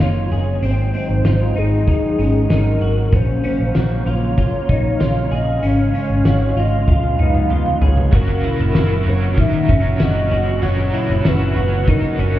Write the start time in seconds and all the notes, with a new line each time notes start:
Already playing: C#3 F#3 A#3 F5
0.00 F#1 F4 C#5, snare, closed hi-hat
0.31 F#1 G#4, closed hi-hat
0.62 G#1 D#3 G#3 C4 D#4 C5, closed hi-hat
0.94 C4, closed hi-hat
1.09 G#1
1.25 G#1 F4, snare, closed hi-hat
1.56 G#1 D#4 G#4, closed hi-hat
1.87 D#4, kick, closed hi-hat
2.18 G#1 C#4, closed hi-hat
2.50 G#1 D#4 A#4, snare, closed hi-hat
2.81 G#1 F#4, closed hi-hat
3.12 A#1 C#3 A#3 C#4 C5 F5, kick, closed hi-hat
3.44 C#4, closed hi-hat
3.60 A#1
3.75 A#1 F#4, snare, closed hi-hat
4.06 A#1 F4 C#5, closed hi-hat
4.37 F4, kick, closed hi-hat
4.69 A#1 D#4, kick, closed hi-hat
5.00 A#1 F4, snare, closed hi-hat
5.31 A#1 G#4 D#5, closed hi-hat
5.62 G#1 G#3 C#4 C#5, closed hi-hat
5.94 C#4, closed hi-hat
6.10 G#1
6.25 G#1 F#4, snare, closed hi-hat
6.56 G#1 F4 D#5, closed hi-hat
6.88 C#2 B3 F4 F5, kick, high tom
7.03 high tom
7.19 C#2 D#4, mid tom
7.34 mid tom
7.50 C#2 F4, mid tom
7.66 mid tom
7.81 C#2 G#4 C#5, floor tom
7.97 floor tom
8.11 F#1 A#2 C#3 F#3 C#4 F#4 A#4, kick, ride
8.44 E4, ride
8.59 F#1
8.73 F#1 F#3 C#4 E4 F#4, snare, ride, tambourine
8.79 A#4
9.06 F#1 F#4 C#5, ride
9.34 D#3 F#3, kick, ride
9.39 C#4 F#4 E5
9.46 A#4
9.69 F#1 C#4, kick, ride
10.00 F#1 F#4 D#5, snare, ride, tambourine
10.31 F#1 F#4, ride
10.62 F#1 F#3 C#4 F#4 A#4 C#5, ride
10.94 E4, ride
11.09 F#1
11.24 F#1 F#3 C#4 E4 F#4, snare, ride, tambourine
11.28 B4
11.56 F#1 F#4, ride
11.84 F#3 D#4, kick, ride
11.89 C#4 F#4 A#4
12.19 F#1 C#4, ride